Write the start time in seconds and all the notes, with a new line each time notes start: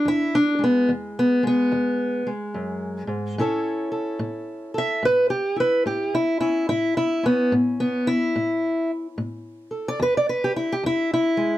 0.05 E2 E4
0.35 D4
0.59 G#3
0.64 B3
0.89 E2
1.19 B3
1.43 G#3 B3
1.72 E2
2.27 G#3
2.54 F#2
3.07 G#2
3.38 A2 C#4 E4 A4 C#5
3.92 A4
4.19 A2
4.74 A4 E5
5.03 A2 B4
5.30 G4
5.56 E4 B4
5.86 A2 G4
6.15 E4
6.40 C#4 E4
6.69 A2 E4
6.97 E4
7.23 B3 C#4
7.52 A2
7.80 B3
8.07 E4
8.36 A2
9.18 A2
9.71 A4
9.88 D5
10.00 E2 B4
10.17 D5
10.29 B4
10.44 G4
10.56 E4
10.72 G4
10.83 E2 E4
11.14 E4
11.37 G#3